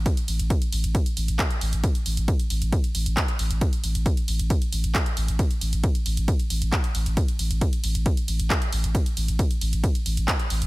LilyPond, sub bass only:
\new Staff \with { instrumentName = "Sub bass" } { \clef bass \time 4/4 \key c \major \tempo 4 = 135 r8 a,,16 a,,16 r8 a,,16 a,,16 r8 a,,16 a,,16 r8 a,,16 a,,16 | r8 a,,16 a,,16 r8 a,,16 a,,16 r8 a,,16 a,,16 r8 a,,16 a,,16 | r8 a,,16 a,,16 r8 a,,16 a,,16 r8 a,,16 a,,16 r8 a,,16 a,,16 | r8 a,,16 a,,16 r8 a,,16 a,,16 r8 a,,16 a,,16 r8 a,,16 a,,16 |
r8 a,,16 a,,16 r8 a,,16 a,,16 r8 a,,16 a,,16 r8 a,,16 a,,16 | r8 a,,16 a,,16 r8 a,,16 a,,16 r8 a,,16 a,,16 r8 a,,16 a,,16 | }